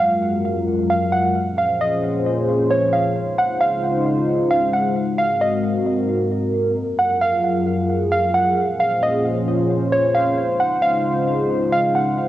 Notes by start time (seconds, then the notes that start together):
Already playing: F#2 F#3 G#3 F4 A#4
0.00 F5
0.90 F5
1.12 F#5
1.35 A#2 F3 C#4 G#4 C5
1.58 F5
1.81 D#5
2.71 C#5
2.93 F5
3.16 C#3 G#3 D#4 F4 C5
3.38 F#5
3.61 F5
4.51 F5
4.73 F#5
4.96 G#2 C4 F#4 A#4
5.18 F5
5.41 D#5
6.76 F#2 F#3 F4 G#4
6.99 F#5
7.21 F5
8.12 F5
8.34 F#5
8.57 A#2 F3 C#4 C5
8.80 F5
9.03 D#5
9.92 C#5
10.15 F5
10.37 C#3 G#3 D#4 F4
10.60 F#5
10.82 F5
11.72 F5
11.95 F#5
12.18 G#2 A#3 F#4